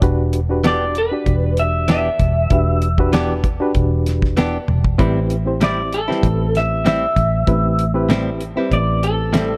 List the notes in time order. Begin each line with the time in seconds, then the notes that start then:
0.02 E1 D4 F#4 G4 B4, kick, closed hi-hat
0.33 closed hi-hat
0.49 D4 F#4 G4 B4
0.64 E3 B3 D4 G4 D5, snare, closed hi-hat
0.95 B4, closed hi-hat
1.12 D4 F#4 G4 D5
1.26 E1, kick, closed hi-hat
1.57 E5, closed hi-hat
1.88 E3 B3 D4 G4 E5, snare, closed hi-hat
2.20 E1, kick, closed hi-hat
2.50 E1 D4 F#4 G4 B4, kick, closed hi-hat
2.82 closed hi-hat
2.98 D4 F#4 G4 B4, kick
3.13 E3 B3 D4 G4, snare, closed hi-hat
3.44 kick, closed hi-hat
3.60 D4 F#4 G4 B4
3.75 E1, kick, closed hi-hat
4.06 snare, closed hi-hat
4.22 kick, snare
4.37 E3 B3 D4 G4, snare, closed hi-hat
4.68 E1, high tom
4.84 kick
4.98 A1 A2 G3 C4 E4 G4 B4, kick, closed hi-hat
5.30 closed hi-hat
5.45 C4 E4 G4 C5
5.61 A2 G3 C4 E4 D5, snare, closed hi-hat
5.93 A4, closed hi-hat
6.08 G3 C4 E4 G4 B4, snare
6.23 A1, kick, closed hi-hat
6.55 E5, snare, closed hi-hat
6.85 A2 G3 C4 E4 E5, snare, closed hi-hat
7.16 A1, kick, closed hi-hat
7.47 A1 C4 E4 G4 B4, kick, closed hi-hat
7.79 closed hi-hat
7.94 C4 E4 G4 B4
8.09 A2 G3 C4 E4, snare, closed hi-hat
8.41 closed hi-hat
8.56 G3 C4 E4 G4 B4
8.71 A1 D5, kick, closed hi-hat
9.03 A4, closed hi-hat
9.33 A2 G3 C4 E4, snare, closed hi-hat